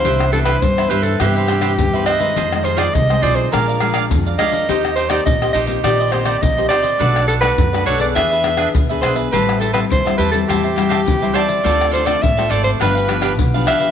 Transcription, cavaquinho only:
\new Staff \with { instrumentName = "Cavaquinho" } { \time 4/4 \key c \major \tempo 4 = 103 <g' b' c'' e''>8 <g' b' c'' e''>16 <g' b' c'' e''>16 r16 <b' c'' e''>16 <g' b' c'' e''>8 <g' b' c'' e''>16 <b' c'' e''>16 <g' b' c'' e''>16 <g' b' c'' e''>16 r16 <b' c'' e''>16 <g' b' c'' e''>16 <b' c'' e''>16 | <f' aes' c'' ees''>8 <f' aes' c'' ees''>16 <f' aes' c'' ees''>16 r16 <aes' c'' ees''>16 <f' aes' c'' ees''>8 <aes' bes' d'' f''>16 <bes' d'' f''>16 <aes' bes' d'' f''>16 <aes' bes' d'' f''>16 r16 <bes' d'' f''>16 <aes' bes' d'' f''>16 <bes' d'' f''>16 | <ees' g' c'' ees''>8 <ees' g' c'' ees''>16 <ees' g' c'' ees''>16 r16 <g' c'' ees''>16 <ees' g' c'' ees''>8 <ees' g' c'' ees''>16 <g' c'' ees''>16 <ees' g' c'' ees''>16 <ees' g' c'' ees''>16 r16 <g' c'' ees''>16 <ees' g' c'' ees''>16 <g' c'' ees''>16 | <d' a' b' d''>8 <d' a' b' d''>16 <d' a' b' d''>16 r16 <a' b' d''>16 <d' a' b' d''>8 <d' gis' b' e''>16 <gis' b' e''>16 <d' gis' b' e''>16 <d' gis' b' e''>16 r16 <gis' b' e''>16 <d' gis' b' e''>16 <gis' b' e''>16 |
<g' c'' e'' a''>8 <g' c'' e'' a''>16 <g' c'' e'' a''>16 r16 <c'' e'' a''>16 <g' c'' e'' a''>8 <g' c'' e'' a''>16 <c'' e'' a''>16 <g' c'' e'' a''>16 <g' c'' e'' a''>16 r16 <c'' e'' a''>16 <g' c'' e'' a''>16 <c'' e'' a''>16 | <f' a' c'' d''>8 <f' a' c'' d''>16 <f' a' c'' d''>16 r16 <a' c'' d''>16 <f' a' c'' d''>8 <d' g' b' f''>16 <g' b' f''>16 <d' g' b' f''>16 <d' g' b' f''>16 r16 <g' b' f''>16 <d' g' b' f''>16 <g' b' f''>16 | }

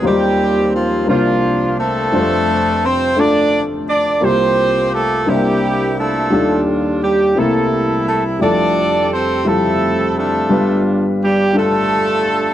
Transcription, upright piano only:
<<
  \new Staff \with { instrumentName = "Upright piano" } { \time 6/8 \key f \major \tempo 4. = 57 <ges g ees' f' c''>4 r8 <bes d' f' c''>4 r8 | <g a d' f' c''>4 r8 <a d' f' a'>4 r8 | <bes f' g' c''>4 r8 <bes d' e' c''>4 r8 | <g d' f' a'>4 r8 <g bes c' e'>4 r8 |
<g e' f' a'>4 r8 <f g e' a'>4 r8 | <g d' f' b'>4 r8 <g d' f' a'>4 r8 | }
  \new Staff \with { instrumentName = "Upright piano" } { \clef bass \time 6/8 \key f \major <ees, ees>4. <c, c>4. | <f,, f,>2. | <c, c>4. <c, c>4. | <ees, ees>4. <c, c>4. |
<f,, f,>2. | <g,, g,>2. | }
>>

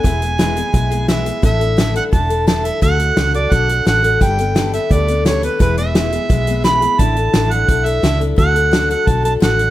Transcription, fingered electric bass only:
\new Staff \with { instrumentName = "Fingered electric bass" } { \clef bass \time 4/4 \key e \dorian \tempo 4 = 173 e,,2 b,,2 | a,,2 e,,2 | d,4 cis,4 b,,4 a,,4 | g,,2 d,2 |
e,,2 b,,2 | a,,4 a,,4 b,,4 cis,4 | d,2 b,,4 a,,4 | }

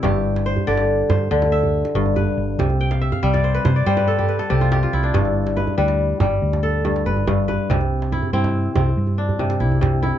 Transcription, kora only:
<<
  \new Staff \with { instrumentName = "Kora" } { \time 12/8 \key g \mixolydian \tempo 4. = 94 <e' g'>4 c''8 d''4 c''4 e''4. b'4~ | b'8 g''16 f''16 e''16 f''16 e''16 d''16 c''16 b'16 c''16 d''16 c''16 b'16 a'16 g'16 b'16 a'16 g'16 f'16 g'16 f'16 e'16 d'16~ | d'16 r8. b'8 b'4. r8 a'4 b'4 b'8~ | b'8 r8 e'8 e'4. r8 d'4 e'4 e'8 | }
  \new Staff \with { instrumentName = "Kora" } { \clef bass \time 12/8 \key g \mixolydian g,4 r8 d4 r8 d4 r8 g,4 r8 | c4 r8 g4 r8 g4 r8 c4 r8 | g,4 r8 g4 g4 r8 g,4 g,4 | c4 r8 c'4 c'4 r8 c4 c4 | }
>>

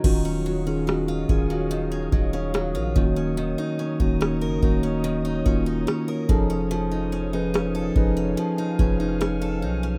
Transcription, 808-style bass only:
\new Staff \with { instrumentName = "808-style bass" } { \clef bass \time 4/4 \key ees \minor \tempo 4 = 72 ees,,4. ees,,4 ees,,8. bes,,16 ees,,8~ | ees,,16 r8 ees,,8 ges,,16 ees,,4 ees,,8 r8 f,,8~ | f,,4. f,,8 r8 f,,4 ces,8 | }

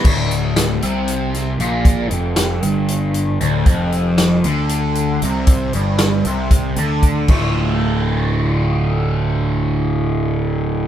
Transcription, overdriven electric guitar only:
\new Staff \with { instrumentName = "Overdriven electric guitar" } { \clef bass \time 7/8 \key d \minor \tempo 4 = 116 d,4. c4. bes,8~ | bes,8 f,4 g,4. d,8 | f,4. d4. c8~ | c8 g,4 c4 d4 |
<d, a, d a f'>2.~ <d, a, d a f'>8~ | <d, a, d a f'>2.~ <d, a, d a f'>8 | }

